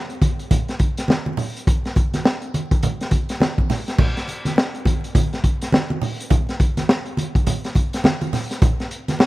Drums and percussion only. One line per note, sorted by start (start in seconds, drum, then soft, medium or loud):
0.10 closed hi-hat soft
0.22 kick medium
0.22 closed hi-hat medium
0.22 muted conga soft
0.22 high conga medium
0.39 closed hi-hat soft
0.51 kick medium
0.51 closed hi-hat loud
0.51 high conga medium
0.51 low conga medium
0.68 snare soft
0.68 closed hi-hat soft
0.79 kick medium
0.79 closed hi-hat medium
0.79 high conga soft
0.97 snare soft
0.97 closed hi-hat medium
1.08 snare medium
1.08 high conga medium
1.26 high conga medium
1.37 open hi-hat medium
1.37 muted conga soft
1.37 low conga medium
1.57 closed hi-hat medium
1.67 kick loud
1.67 closed hi-hat medium
1.85 snare soft
1.85 closed hi-hat soft
1.96 kick loud
1.96 closed hi-hat medium
1.96 muted conga soft
2.14 snare soft
2.14 closed hi-hat medium
2.14 high conga medium
2.24 snare loud
2.24 muted conga soft
2.42 closed hi-hat soft
2.54 closed hi-hat medium
2.54 muted conga soft
2.54 high conga medium
2.71 kick loud
2.71 closed hi-hat soft
2.83 closed hi-hat medium
2.83 high conga medium
2.83 low conga medium
3.01 snare soft
3.01 closed hi-hat soft
3.11 kick medium
3.11 closed hi-hat medium
3.11 muted conga soft
3.11 high conga soft
3.29 snare soft
3.29 closed hi-hat medium
3.40 snare medium
3.40 high conga medium
3.58 kick medium
3.58 high conga medium
3.70 snare soft
3.70 open hi-hat medium
3.70 muted conga soft
3.70 low conga medium
3.88 snare soft
3.88 closed hi-hat medium
3.98 kick loud
3.98 crash loud
3.98 muted conga soft
3.98 low conga medium
4.17 snare soft
4.17 closed hi-hat soft
4.28 closed hi-hat medium
4.28 muted conga soft
4.45 snare soft
4.45 closed hi-hat medium
4.45 high conga medium
4.56 snare loud
4.56 muted conga soft
4.75 closed hi-hat soft
4.85 kick loud
4.85 closed hi-hat medium
4.85 muted conga soft
4.85 high conga medium
5.04 closed hi-hat soft
5.15 kick medium
5.15 closed hi-hat loud
5.15 muted conga soft
5.15 high conga medium
5.15 low conga medium
5.33 snare soft
5.33 closed hi-hat soft
5.44 kick medium
5.44 closed hi-hat medium
5.62 snare soft
5.62 closed hi-hat medium
5.72 snare loud
5.72 muted conga soft
5.72 high conga medium
5.90 high conga medium
6.02 open hi-hat medium
6.02 low conga medium
6.20 closed hi-hat medium
6.30 kick loud
6.30 closed hi-hat medium
6.30 low conga medium
6.49 snare soft
6.49 closed hi-hat soft
6.60 kick loud
6.60 closed hi-hat medium
6.60 muted conga soft
6.77 snare soft
6.77 closed hi-hat medium
6.77 high conga medium
6.89 snare loud
7.06 closed hi-hat soft
7.17 closed hi-hat medium
7.17 muted conga soft
7.17 high conga medium
7.35 kick medium
7.35 closed hi-hat soft
7.47 closed hi-hat loud
7.47 muted conga soft
7.47 high conga medium
7.47 low conga medium
7.64 snare soft
7.64 closed hi-hat soft
7.75 kick medium
7.75 closed hi-hat medium
7.75 muted conga soft
7.93 snare soft
7.93 closed hi-hat medium
8.04 snare loud
8.04 muted conga soft
8.04 high conga medium
8.21 closed hi-hat soft
8.21 high conga medium
8.33 snare soft
8.33 open hi-hat medium
8.33 muted conga soft
8.33 low conga medium
8.51 snare soft
8.51 closed hi-hat medium
8.62 kick loud
8.62 closed hi-hat medium
8.62 muted conga soft
8.62 low conga medium
8.80 snare soft
8.80 closed hi-hat soft
8.91 closed hi-hat medium
9.08 snare soft
9.08 closed hi-hat medium
9.08 high conga medium
9.19 snare loud
9.19 muted conga soft